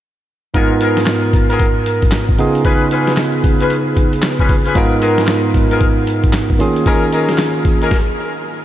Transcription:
0.54 tine electric piano G#2 B3 D#4 F4 A#4, horn section B3 F4 G#4 A#4, kick, closed hi-hat
0.80 horn section B3 F4 G#4 A#4, closed hi-hat
0.97 snare, closed hi-hat
1.06 snare, clap, closed hi-hat
1.33 kick, closed hi-hat
1.50 horn section B3 F4 G#4 A#4, closed hi-hat
1.59 kick, closed hi-hat
1.86 closed hi-hat
2.02 kick, closed hi-hat
2.11 snare, clap, closed hi-hat
2.29 kick
2.38 tine electric piano C#3 B3 D#4 F4 G#4, closed hi-hat
2.55 closed hi-hat
2.65 horn section C#4 F4 G#4 B4, kick, closed hi-hat
2.91 horn section C#4 F4 G#4 B4, closed hi-hat
3.07 snare, closed hi-hat
3.17 snare, clap, closed hi-hat
3.44 kick, closed hi-hat
3.60 horn section C#4 F4 G#4 B4, closed hi-hat
3.70 closed hi-hat
3.97 kick, closed hi-hat
4.13 closed hi-hat
4.22 snare, clap, closed hi-hat
4.39 horn section C#4 F4 G#4 B4, kick
4.49 kick, closed hi-hat
4.65 horn section C#4 F4 G#4 B4, closed hi-hat
4.75 tine electric piano G#2 B3 D#4 F4 A#4, horn section B3 F4 G#4 A#4, kick, closed hi-hat
5.01 horn section B3 F4 G#4 A#4, closed hi-hat
5.18 snare, closed hi-hat
5.27 snare, clap, closed hi-hat
5.54 kick, closed hi-hat
5.71 horn section B3 F4 G#4 A#4, closed hi-hat
5.81 kick, closed hi-hat
6.07 closed hi-hat
6.24 kick, closed hi-hat
6.33 snare, clap, closed hi-hat
6.50 kick
6.59 tine electric piano D#3 A#3 C#4 F4 G#4, closed hi-hat
6.76 closed hi-hat
6.86 horn section C#4 D#4 G#4 A#4, kick, closed hi-hat
7.12 horn section C#4 D#4 G#4 A#4, closed hi-hat
7.29 snare, closed hi-hat
7.38 snare, clap, closed hi-hat
7.65 kick, closed hi-hat
7.81 horn section C#4 D#4 G#4 A#4, closed hi-hat
7.91 kick, snare

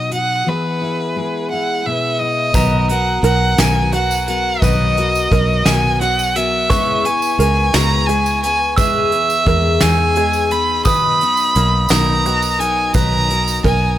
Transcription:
Already playing: steel-string acoustic guitar B2 F#3 D#4 F#4 B4, violin D#5
0.11 steel-string acoustic guitar F#4, violin F#5, closed hi-hat
0.46 steel-string acoustic guitar E3 B3 E4 G#4, violin B4
0.82 steel-string acoustic guitar E4
1.16 steel-string acoustic guitar G#3 G#4
1.50 steel-string acoustic guitar E4, violin F#5
1.86 steel-string acoustic guitar B2 B3, violin E5
2.19 steel-string acoustic guitar E4, violin D#5
2.54 fingered electric bass B1, twelve-string acoustic guitar B2 D#3 F#3 B3 F#4 A#4, five-string banjo B4, glockenspiel A#5, kick, closed hi-hat, tambourine
2.89 twelve-string acoustic guitar F#3 B3 F#4 A#4, violin F#5, closed hi-hat
3.23 fingered electric bass B1, twelve-string acoustic guitar F#3 B3 F#4 A#4, five-string banjo A#4, violin F#5, closed hi-hat, tambourine
3.58 fingered electric bass B1, twelve-string acoustic guitar B2 D#3 F#3 B3 F#4 A#4, violin G#5, snare, closed hi-hat, tambourine
3.92 twelve-string acoustic guitar F#3 B3 F#4 A#4, five-string banjo F#4, violin F#5, closed hi-hat
4.11 tambourine
4.28 twelve-string acoustic guitar F#3 B3 F#4 A#4, violin F#5, closed hi-hat
4.61 fingered electric bass B1, twelve-string acoustic guitar B2 D#3 F#3 B3 F#4 A#4, five-string banjo B4, violin D#5, kick, closed hi-hat, tambourine
4.97 twelve-string acoustic guitar F#3 B3 F#4 A#4, closed hi-hat
5.15 tambourine
5.32 fingered electric bass B1, twelve-string acoustic guitar F#3 B3 F#4 A#4, five-string banjo A#4, kick, closed hi-hat, tambourine
5.65 fingered electric bass B1, twelve-string acoustic guitar B2 D#3 F#3 B3 F#4 A#4, violin G#5, snare, closed hi-hat, tambourine
6.00 twelve-string acoustic guitar F#3 B3 F#4 A#4, five-string banjo F#4, violin F#5, closed hi-hat
6.19 tambourine
6.35 twelve-string acoustic guitar F#3 B3 F#4 A#4, violin E5, closed hi-hat
6.70 fingered electric bass C#2, twelve-string acoustic guitar C#3 G#3 B3 E4 B4, five-string banjo B4, glockenspiel C#6, kick, closed hi-hat, tambourine
7.05 twelve-string acoustic guitar B3 E4 B4, violin G#5, closed hi-hat
7.22 tambourine
7.39 fingered electric bass C#2, twelve-string acoustic guitar G#3 B3 E4 B4, five-string banjo A#4, violin G#5, closed hi-hat, tambourine
7.74 fingered electric bass C#2, twelve-string acoustic guitar C#3 G#3 B3 E4 B4, violin A#5, snare, closed hi-hat, tambourine
8.07 twelve-string acoustic guitar G#3 B3 E4 B4, five-string banjo G#4, violin G#5, closed hi-hat
8.26 tambourine
8.42 twelve-string acoustic guitar B3 E4 B4, violin G#5, closed hi-hat
8.76 fingered electric bass E2, twelve-string acoustic guitar E3 G#3 B3 G#4, five-string banjo B4, violin E5, glockenspiel E6, kick, closed hi-hat, tambourine
9.12 twelve-string acoustic guitar B3 G#4, closed hi-hat
9.30 tambourine
9.46 fingered electric bass E2, twelve-string acoustic guitar G#3 B3 G#4, five-string banjo A#4, kick, closed hi-hat
9.81 fingered electric bass E2, twelve-string acoustic guitar E3 G#3 B3 D#4 G#4, violin G#5, snare, closed hi-hat, tambourine
10.15 twelve-string acoustic guitar G#3 B3 D#4 G#4, five-string banjo G#4, closed hi-hat
10.33 tambourine
10.50 twelve-string acoustic guitar B3 D#4 G#4, violin B5, closed hi-hat
10.85 fingered electric bass B1, twelve-string acoustic guitar B2 D#3 F#3 B3 D#4, five-string banjo B4, violin B5, glockenspiel D#6, kick, closed hi-hat, tambourine
11.21 twelve-string acoustic guitar F#3 B3 D#4, closed hi-hat
11.37 tambourine
11.55 fingered electric bass B1, twelve-string acoustic guitar F#3 B3 D#4, five-string banjo A#3, closed hi-hat, tambourine
11.89 fingered electric bass B1, twelve-string acoustic guitar B2 D#3 F#3 B3 D#4 A#4, violin A#5, snare, closed hi-hat, tambourine
12.25 twelve-string acoustic guitar F#3 B3 D#4 A#4, five-string banjo F#4, closed hi-hat
12.42 tambourine
12.59 twelve-string acoustic guitar F#3 B3 D#4 A#4, violin G#5, closed hi-hat
12.94 fingered electric bass B1, twelve-string acoustic guitar B2 D#3 F#3 B3 D#4 A#4, five-string banjo B4, violin A#5, kick, closed hi-hat, tambourine
13.29 twelve-string acoustic guitar F#3 B3 D#4 A#4, closed hi-hat
13.48 tambourine
13.64 fingered electric bass B1, twelve-string acoustic guitar F#3 B3 D#4 A#4, five-string banjo A#4, violin G#5, kick, closed hi-hat, tambourine

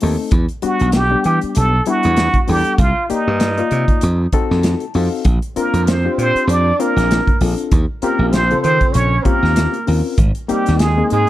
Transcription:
0.00 slap bass D#2, reed electric piano A3 C4 D#4 A4, open hi-hat
0.31 slap bass E2, kick, closed hi-hat
0.49 closed hi-hat
0.62 reed electric piano G3 B3 D4 F#4, muted trumpet F#4, muted slap bass stroke, closed hi-hat
0.80 slap bass B1, closed hi-hat
0.92 muted trumpet G4, snare, closed hi-hat
1.11 reed electric piano G3 B3 D4 G4
1.24 slap bass E3, muted trumpet G4, closed hi-hat
1.41 muted slap bass stroke, closed hi-hat
1.55 slap bass B1, muted trumpet A4, closed hi-hat
1.86 reed electric piano G3 B3 D4 E4, muted trumpet F#4, closed hi-hat
2.03 slap bass E2, closed hi-hat
2.17 snare, closed hi-hat
2.34 kick, closed hi-hat
2.48 slap bass E2, reed electric piano G3 B3 D4 A4, muted trumpet G4, open hi-hat
2.64 closed hi-hat
2.78 slap bass C2, muted trumpet F4, kick, closed hi-hat
3.10 reed electric piano A#3 D#4 G4 D5, muted trumpet D#4, muted slap bass stroke, closed hi-hat
3.27 slap bass G2
3.40 snare, closed hi-hat
3.58 reed electric piano A#3 D#4 F4 D5, closed hi-hat
3.71 slap bass C3, closed hi-hat
3.88 kick, closed hi-hat
4.01 slap bass F2, closed hi-hat
4.32 reed electric piano C4 D#4 F#4 A4, kick, closed hi-hat
4.51 slap bass F2, snare
4.63 reed electric piano A5, snare, closed hi-hat
4.80 closed hi-hat
4.94 slap bass F2, reed electric piano C4 D#4 F#4 A4 F5, open hi-hat
5.25 slap bass A#1, kick, closed hi-hat
5.42 closed hi-hat
5.56 reed electric piano C4 D4 F4 A#4, muted trumpet A#4, muted slap bass stroke, closed hi-hat
5.60 tenor saxophone A#3
5.73 slap bass F2, closed hi-hat
5.87 tenor saxophone C4, muted trumpet C5, snare, closed hi-hat
6.05 reed electric piano C4 D4 F4 G4
6.18 slap bass A#2, tenor saxophone C4, muted trumpet C5, closed hi-hat
6.35 muted slap bass stroke, closed hi-hat
6.47 slap bass F2, tenor saxophone D4, muted trumpet D5, closed hi-hat
6.79 tenor saxophone A#3, reed electric piano C4 D4 F4 A#4, muted trumpet A#4, closed hi-hat
6.96 slap bass A#1, snare, closed hi-hat
7.11 snare, closed hi-hat
7.27 kick, closed hi-hat
7.41 slap bass A#1, reed electric piano C4 D4 F4 A4, open hi-hat
7.58 closed hi-hat
7.71 slap bass D#2, kick, closed hi-hat
8.02 tenor saxophone A#3, reed electric piano C4 C#4 F4 G4, muted trumpet A#4, muted slap bass stroke, closed hi-hat
8.19 slap bass A#1
8.32 tenor saxophone C4, muted trumpet C5, snare, closed hi-hat
8.50 reed electric piano C#3 C4 F4 A4, closed hi-hat
8.61 slap bass D#3, tenor saxophone C4, muted trumpet C5, closed hi-hat
8.81 muted slap bass stroke, kick, closed hi-hat
8.92 slap bass A#1, tenor saxophone C#4, muted trumpet C#5, closed hi-hat
9.23 tenor saxophone A#3, reed electric piano C4 C#4 F4 G4, muted trumpet A#4, kick, closed hi-hat
9.43 slap bass D#2, snare
9.56 snare, closed hi-hat
9.74 closed hi-hat
9.87 slap bass D#2, reed electric piano C4 C#4 F4 A#4, open hi-hat
10.18 slap bass G#1, kick, closed hi-hat
10.35 closed hi-hat
10.48 tenor saxophone G3, reed electric piano A#3 C4 D#4 G4, muted trumpet G4, muted slap bass stroke, closed hi-hat
10.66 slap bass D#2, snare, closed hi-hat
10.79 tenor saxophone G#3, muted trumpet G#4, snare, closed hi-hat
10.97 reed electric piano A#3 C4 D#4 G#4
11.10 slap bass G#2, tenor saxophone G#3, muted trumpet G#4, closed hi-hat

